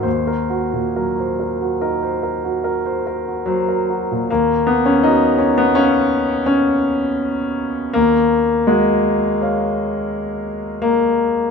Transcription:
<<
  \new Staff \with { instrumentName = "Grand piano" } { \time 5/4 \key ees \minor \tempo 4 = 81 << { c''16 bes'16 ges'16 bes,16 bes'16 c''16 bes'16 ges'16 bes'16 c''16 bes'16 ges'16 bes'16 c''16 bes'16 ges'16 c''16 bes'16 ges'16 bes,16 | r1 r4 | r1 r4 | } \\ { ees,4 ges4 ees'2. | ees,4 ges'4 <ees'' f''>2. | ees,4 ges'4 <des'' f''>2. | } >> }
  \new Staff \with { instrumentName = "Grand piano" } { \time 5/4 \key ees \minor r1 ges4 | bes8 ces'16 des'16 ees'8 des'16 ces'16 des'4 des'2 | bes4 aes2~ aes8 r8 bes4 | }
>>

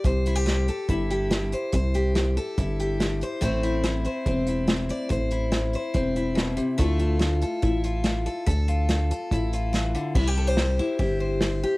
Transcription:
<<
  \new Staff \with { instrumentName = "Steel-string acoustic guitar" } { \time 4/4 \key c \major \tempo 4 = 142 << { c''8 e'16 g'8. a'8 e'8 g'4 c''8 | c''8 g'4 a'8 e'8 g'4 c''8 | <a c' e' c''>8 e'4 c''8 c'8 e'4 d''8 | c''8 e'4 c''8 c'8 e'4. |
<a e' f' a'>8 f'4 a'8 e'8 f'4 a'8 | a'8 f'4 a'8 e'8 f'4. | e'16 g'16 a'16 c''8. e'8 g'8 c''4 g'8 | } \\ { c4 g4 c4 g4 | c4 g4 c4 g4 | a,4 a4 e4 a4 | a,4 a4 e4 b,8 c8 |
d4 a4 a,4 a4 | d4 a4 a,4 e8 d8 | c4 g4 c4 g4 | } >> }
  \new Staff \with { instrumentName = "Analog synth bass" } { \clef bass \time 4/4 \key c \major c,2 g,,2 | c,2 g,,2 | a,,2 e,,2 | a,,2 e,,2 |
d,2 a,,2 | d,2 a,,2 | c,2 g,,2 | }
  \new DrumStaff \with { instrumentName = "Drums" } \drummode { \time 4/4 <hh bd>8 hh8 <hh sn>8 hh8 <hh bd>8 hh8 <hh sn>8 hh8 | <hh bd>8 hh8 <hh sn>8 hh8 <hh bd>8 hh8 <hh sn>8 hh8 | <hh bd>8 hh8 <hh sn>8 hh8 <hh bd>8 hh8 <hh sn>8 hh8 | <hh bd>8 hh8 <hh sn>8 hh8 <hh bd>8 hh8 <hh sn>8 hh8 |
<hh bd>8 hh8 <hh sn>8 hh8 <hh bd>8 hh8 <hh sn>8 hh8 | <hh bd>8 hh8 <hh sn>8 hh8 <hh bd>8 hh8 <hh sn>8 hh8 | <cymc bd>4 <hho sn>4 <hho bd>4 <hho sn>4 | }
>>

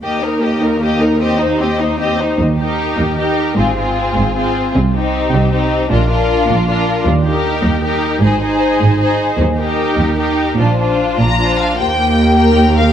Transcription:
<<
  \new Staff \with { instrumentName = "Violin section" } { \time 6/8 \key ees \major \tempo 4. = 102 << { r2. | r2. | r2. | r2. |
r2. | r2. | r2. | r2. |
r2. | r4. bes''4 f''8 | g''4. g''4 f''8 | } \\ { ees''8 bes'8 ees''8 bes'8 ees''8 bes'8 | ees''8 c''8 ees''8 c''8 ees''8 c''8 | r8 bes'4. bes'4 | aes'8 aes'4. aes'4 |
r8 g'4. g'4 | bes'8 bes'4. bes'4 | r8 bes'4. bes'4 | c''8 c''4. c''4 |
r8 bes'4. bes'4 | c''8 c''4 r8 c''4 | r2. | } >> }
  \new Staff \with { instrumentName = "Violin section" } { \time 6/8 \key ees \major g'8 bes'8 g'8 bes'8 g'8 bes'8 | g'8 ees'8 g'8 ees'8 g'8 ees'8 | r8 g'4. g'4 | f'8 f'4. f'4 |
r8 ees'4. ees'4 | f'8 f'4. f'4 | r8 g'4. g'4 | aes'8 aes'4. aes'4 |
r8 g'4. g'4 | f'8 f'4. f'4 | r4. bes'4. | }
  \new Staff \with { instrumentName = "Viola section" } { \time 6/8 \key ees \major bes8 ees'8 bes8 ees'8 bes8 ees'8 | c'8 ees'8 c'8 ees'8 c'8 ees'8 | r8 ees'4. ees'4 | c'8 c'4. c'4 |
r8 c'4. c'4 | d'8 d'4. d'4 | r8 ees'4. ees'4 | ees'8 ees'4. ees'4 |
r8 ees'4. ees'4 | d'8 d'4. d'4 | <bes g'>2. | }
  \new Staff \with { instrumentName = "Cello section" } { \clef bass \time 6/8 \key ees \major ees,2.~ | ees,2~ ees,8 r8 | ees,4. ees,4. | aes,4. aes,4. |
c4. c4. | bes,4. bes,4. | ees,4. ees,4. | aes,4. aes,4. |
ees,4. ees,4. | bes,4. bes,4. | ees,2. | }
  \new Staff \with { instrumentName = "Double bass section" } { \clef bass \time 6/8 \key ees \major r2. | r2. | ees,4. ees,4. | aes,,4. aes,,4. |
c,4. c,4. | bes,,4. bes,,4. | ees,4. ees,4. | aes,,4. aes,,4. |
ees,4. ees,4. | bes,,4. bes,,4. | ees,2. | }
>>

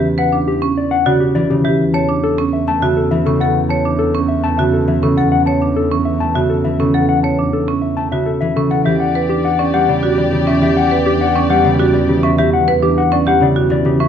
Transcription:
<<
  \new Staff \with { instrumentName = "Clean electric guitar" } { \time 3/4 \key e \dorian \tempo 4 = 102 r16 fis''16 r16 g'16 r16 d''16 fis''16 d''16 g'16 d''16 g'16 e''16 | r16 a''16 r16 a'16 r16 e''16 a''16 e''16 a'16 e''16 a'16 fis''16 | r16 a''16 r16 a'16 r16 e''16 a''16 e''16 a'16 e''16 a'16 fis''16 | fis''16 a''16 r16 a'16 r16 e''16 a''16 e''16 a'16 e''16 a'16 fis''16 |
fis''16 a''16 r16 a'16 r16 e''16 a''16 e''16 a'16 e''16 a'16 fis''16 | e''16 fis''16 r16 g'16 fis''16 d''16 fis''16 d''16 g'16 d''16 g'16 e''16 | e''16 fis''16 r16 g'16 fis''16 d''16 fis''16 d''16 g'16 d''16 g'16 e''16 | e''16 fis''16 r16 g'16 fis''16 d''16 fis''16 d''16 g'16 d''16 g'16 e''16 | }
  \new Staff \with { instrumentName = "String section" } { \time 3/4 \key e \dorian r2. | r2. | r2. | r2. |
r2. | <g' d''>2.~ | <g' d''>2~ <g' d''>8. r16 | r2. | }
  \new Staff \with { instrumentName = "Marimba" } { \time 3/4 \key e \dorian r16 b'16 d'16 r16 cis'16 r8 fis'16 r8. g'16 | r16 cis''16 d'16 r16 cis'16 r8 fis'16 r8 cis'16 a'16 | r16 cis''16 d'16 r16 cis'16 r8 fis'16 r8 cis'16 a'16 | r16 cis''16 d'16 r16 cis'16 r8 fis'16 r8 cis'16 a'16 |
r16 cis''16 d'16 r16 cis'16 r8 fis'16 r8 cis'16 a'16 | g'16 r16 b'16 d'16 r16 cis'16 g'16 r16 fis'16 r8 cis'16 | g'16 r16 b'16 d'16 r16 cis'16 g'16 r16 fis'16 r8 cis'16 | g'16 r16 b'16 d'16 r16 cis'16 g'16 r16 fis'16 r8 cis'16 | }
  \new Staff \with { instrumentName = "Harp" } { \clef bass \time 3/4 \key e \dorian <cis e>4.~ <cis e>16 cis8 e16 cis8 | r4. a16 cis8 e16 cis8~ | cis4. a16 cis8 e16 cis8~ | cis4. a16 cis8 e16 cis8~ |
cis4. a16 cis8 e16 cis8 | e4. g16 cis8 e16 cis8 | e4. g16 cis8 e16 cis8 | e4. g16 cis8 e16 cis8 | }
  \new Staff \with { instrumentName = "Double bass" } { \clef bass \time 3/4 \key e \dorian e,2. | e,2.~ | e,2.~ | e,2.~ |
e,2. | e,2.~ | e,2.~ | e,2. | }
>>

